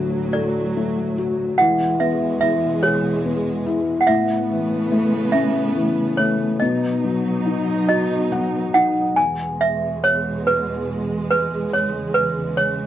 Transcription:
0.00 1.57 D2 medium
0.00 1.57 A2 medium
0.00 1.55 D3 medium
0.00 1.57 F#3 medium
0.00 0.75 A3 soft
0.00 1.17 F#4 soft
0.00 0.29 D5 medium
0.33 1.56 A4 medium
0.33 1.55 D5 medium
0.77 1.57 A3 soft
1.18 1.58 F#4 soft
1.58 4.05 E2 medium
1.58 4.06 B2 medium
1.58 4.04 E3 medium
1.58 4.06 G#3 medium
1.58 2.01 F#5 medium
2.00 3.24 B3 medium
2.00 2.39 E5 medium
2.41 3.65 E4 medium
2.41 2.84 E5 medium
2.83 4.05 G#4 medium
2.83 3.73 C#5 medium
3.25 4.06 B3 medium
3.66 4.07 E4 medium
4.01 4.08 F#5 medium
4.07 6.56 A2 medium
4.07 6.57 C#3 medium
4.07 6.57 A3 medium
4.07 6.57 B3 medium
4.07 5.29 E5 medium
4.51 5.74 E3 medium
4.92 6.18 A3 medium
5.32 6.56 C#4 medium
5.32 6.13 E5 medium
5.75 6.57 E3 soft
6.17 6.59 A3 medium
6.17 6.36 C#5 medium
6.60 9.14 B2 medium
6.60 9.14 F#3 medium
6.60 9.14 D#4 medium
6.60 7.87 D#5 medium
7.04 8.30 F#3 medium
7.46 8.73 D#4 medium
7.89 9.14 F#4 medium
7.89 8.77 D#5 medium
8.32 9.15 F#3 soft
8.32 9.14 F#5 medium
8.74 9.16 D#4 medium
8.74 9.18 F#5 medium
9.16 12.87 E2 medium
9.16 11.70 B2 medium
9.16 12.87 G#3 medium
9.16 9.61 G#5 medium
9.61 10.05 E5 medium
10.04 10.23 C#5 medium
10.47 11.27 B4 medium
11.31 11.74 B4 medium
11.73 12.87 C#3 medium
11.73 12.17 C#5 medium
12.14 12.59 B4 medium
12.57 12.87 C#5 medium

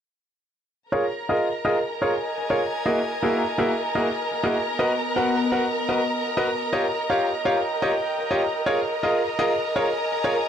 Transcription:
0.92 1.04 F4 medium
0.92 1.04 G#4 medium
0.92 8.65 A#4 medium
0.92 1.04 A#4 medium
0.92 10.48 A#4 medium
0.92 1.04 C#5 medium
0.92 8.65 A#5 medium
1.16 closed hi-hat medium
1.29 1.47 F4 medium
1.29 1.47 G#4 medium
1.29 1.47 A#4 medium
1.29 1.47 D#5 medium
1.65 1.76 F4 medium
1.65 1.77 G#4 medium
1.65 1.77 A#4 medium
1.65 1.76 D#5 medium
1.65 6.49 G#5 medium
1.69 10.48 D#5 medium
2.02 2.12 F4 medium
2.02 2.12 G#4 medium
2.02 2.12 A#4 medium
2.02 2.12 C#5 medium
2.50 2.60 F4 medium
2.50 2.60 G#4 medium
2.50 2.60 A#4 medium
2.50 2.60 C#5 medium
2.86 2.97 A#3 medium
2.86 2.97 E4 medium
2.86 2.97 F#4 medium
2.86 2.97 G#4 medium
2.86 2.97 A#4 medium
2.86 2.97 D#5 medium
3.23 3.40 A#3 medium
3.23 3.40 E4 medium
3.23 3.40 F#4 medium
3.23 3.40 G#4 medium
3.23 3.40 A#4 medium
3.23 3.40 E5 medium
3.58 3.70 A#3 medium
3.58 3.70 E4 medium
3.58 3.70 F#4 medium
3.58 3.70 G#4 medium
3.58 3.70 A#4 medium
3.58 3.70 E5 medium
3.95 4.06 A#3 medium
3.95 4.06 E4 medium
3.95 4.06 F#4 medium
3.95 4.06 G#4 medium
3.95 4.06 A#4 medium
3.95 4.06 D#5 medium
4.44 4.54 A#3 medium
4.44 4.54 E4 medium
4.44 4.54 F#4 medium
4.44 4.54 G#4 medium
4.44 4.54 A#4 medium
4.44 4.54 D#5 medium
4.55 6.49 B3 medium
4.79 4.91 F#4 medium
4.79 4.91 A#4 medium
4.79 4.91 B4 medium
4.79 4.91 D#5 medium
5.16 5.34 F#4 medium
5.16 5.34 A#4 medium
5.16 5.34 B4 medium
5.16 5.34 F#5 medium
5.52 5.64 F#4 medium
5.52 5.64 A#4 medium
5.52 5.64 B4 medium
5.52 5.64 F#5 medium
5.89 5.99 F#4 medium
5.89 5.99 A#4 medium
5.89 5.99 B4 medium
5.89 5.99 D#5 medium
6.37 6.47 F#4 medium
6.37 6.47 A#4 medium
6.37 6.47 B4 medium
6.37 6.47 D#5 medium
6.61 closed hi-hat soft
6.73 6.85 F4 medium
6.73 6.85 G4 medium
6.73 6.85 C#5 medium
6.73 6.85 D#5 medium
7.10 7.27 F4 medium
7.10 7.27 G4 medium
7.10 7.27 C#5 medium
7.10 7.27 F5 medium
7.45 7.57 F4 medium
7.45 7.57 G4 medium
7.45 7.57 C#5 medium
7.45 7.57 F5 medium
7.45 8.66 G5 medium
7.82 7.93 F4 medium
7.82 7.93 G4 medium
7.82 7.93 C#5 medium
7.82 7.93 D#5 medium
7.94 closed hi-hat medium
8.31 8.41 F4 medium
8.31 8.41 G4 medium
8.31 8.41 C#5 medium
8.31 8.41 D#5 medium
8.42 closed hi-hat medium
8.66 8.78 F4 medium
8.66 8.78 G#4 medium
8.66 8.78 A#4 medium
8.66 10.48 A#4 medium
8.66 8.78 C#5 medium
8.66 10.48 A#5 medium
8.90 closed hi-hat medium
9.03 9.21 F4 medium
9.03 9.21 G#4 medium
9.03 9.21 A#4 medium
9.03 9.21 D#5 medium
9.39 9.51 F4 medium
9.39 9.51 G#4 medium
9.39 9.51 A#4 medium
9.39 9.51 D#5 loud
9.39 10.48 G#5 medium
9.76 9.86 F4 medium
9.76 9.86 G#4 medium
9.76 9.86 A#4 medium
9.76 9.86 C#5 medium
10.24 10.34 F4 medium
10.24 10.34 G#4 medium
10.24 10.34 A#4 medium
10.24 10.34 C#5 medium
10.35 closed hi-hat medium

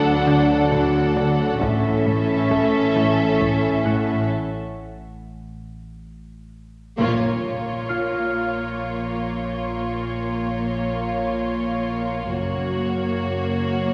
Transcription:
0.00 1.57 D2 medium
0.00 1.61 D2 medium
0.00 1.57 F#3 medium
0.00 1.57 D4 medium
0.00 1.57 A4 medium
0.00 1.57 F#5 medium
0.27 0.54 D3 medium
0.71 0.98 D3 medium
0.71 taiko medium
1.16 1.43 D3 medium
1.61 4.25 A1 medium
1.61 6.98 A1 medium
1.61 4.26 A2 medium
1.61 1.88 A2 medium
1.61 4.26 E3 medium
1.61 4.25 C#4 medium
1.61 4.26 C#4 medium
1.61 4.26 A4 medium
1.61 4.26 E5 medium
1.61 taiko medium
2.06 2.33 A2 medium
2.51 2.78 A3 medium
2.51 taiko medium
2.96 3.23 A2 medium
3.40 3.67 A2 medium
3.40 taiko medium
3.85 4.12 A2 medium
3.85 7.02 F#5 soft
6.98 12.31 A#1 medium
6.98 12.32 A#1 medium
6.98 12.32 A#2 soft
6.98 12.31 A#3 soft
6.98 12.31 F4 soft
6.98 12.32 C#5 soft
6.98 impact soft
7.89 11.80 F4 soft
7.89 11.79 F5 soft
12.35 13.94 F#1 soft
12.35 13.94 F#1 medium
12.35 13.94 F#2 soft
12.35 13.94 A#3 soft
12.35 13.94 F#4 soft
12.35 13.94 C#5 soft

